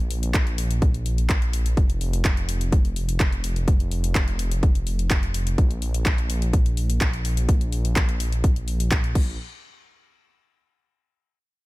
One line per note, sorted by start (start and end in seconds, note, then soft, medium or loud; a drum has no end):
0.00 1.75 A#1 medium
0.11 open hi-hat loud
0.23 closed hi-hat medium
0.34 kick loud
0.34 clap loud
0.34 closed hi-hat soft
0.47 closed hi-hat soft
0.58 open hi-hat loud
0.71 closed hi-hat soft
0.82 kick loud
0.82 closed hi-hat medium
0.94 closed hi-hat soft
1.06 open hi-hat loud
1.18 closed hi-hat soft
1.30 kick loud
1.30 clap loud
1.30 closed hi-hat soft
1.42 closed hi-hat soft
1.53 open hi-hat medium
1.66 closed hi-hat soft
1.77 5.56 F1 medium
1.77 kick loud
1.77 closed hi-hat medium
1.90 closed hi-hat soft
2.01 open hi-hat loud
2.13 closed hi-hat medium
2.25 kick loud
2.25 clap loud
2.25 closed hi-hat medium
2.37 closed hi-hat soft
2.49 open hi-hat loud
2.61 closed hi-hat soft
2.72 kick loud
2.72 closed hi-hat soft
2.85 closed hi-hat soft
2.96 open hi-hat loud
3.09 closed hi-hat medium
3.20 kick loud
3.20 clap loud
3.20 closed hi-hat soft
3.32 closed hi-hat soft
3.44 open hi-hat medium
3.56 closed hi-hat soft
3.68 kick loud
3.68 closed hi-hat medium
3.80 closed hi-hat soft
3.91 open hi-hat loud
4.04 closed hi-hat medium
4.15 kick loud
4.15 clap loud
4.15 closed hi-hat medium
4.28 closed hi-hat soft
4.39 open hi-hat medium
4.51 closed hi-hat soft
4.63 kick loud
4.63 closed hi-hat medium
4.75 closed hi-hat soft
4.87 open hi-hat loud
4.99 closed hi-hat medium
5.11 kick loud
5.11 clap loud
5.11 closed hi-hat medium
5.23 closed hi-hat soft
5.34 open hi-hat medium
5.47 closed hi-hat medium
5.58 9.15 A#1 medium
5.58 kick loud
5.58 closed hi-hat medium
5.71 closed hi-hat soft
5.82 open hi-hat loud
5.94 closed hi-hat medium
6.06 kick loud
6.06 clap loud
6.06 closed hi-hat medium
6.18 closed hi-hat soft
6.30 open hi-hat medium
6.42 closed hi-hat medium
6.53 kick loud
6.53 closed hi-hat medium
6.66 closed hi-hat soft
6.77 open hi-hat loud
6.90 closed hi-hat medium
7.01 kick loud
7.01 clap loud
7.01 closed hi-hat medium
7.13 closed hi-hat soft
7.25 open hi-hat medium
7.37 closed hi-hat medium
7.49 kick loud
7.49 closed hi-hat medium
7.61 closed hi-hat soft
7.72 open hi-hat loud
7.85 closed hi-hat medium
7.96 kick loud
7.96 clap loud
7.96 closed hi-hat medium
8.09 closed hi-hat soft
8.20 open hi-hat medium
8.32 closed hi-hat medium
8.44 kick loud
8.44 closed hi-hat medium
8.56 closed hi-hat soft
8.68 open hi-hat loud
8.80 closed hi-hat medium
8.91 kick loud
8.91 clap loud
8.91 closed hi-hat medium
9.04 closed hi-hat soft
9.15 9.37 A#1 loud
9.15 kick loud
9.15 crash medium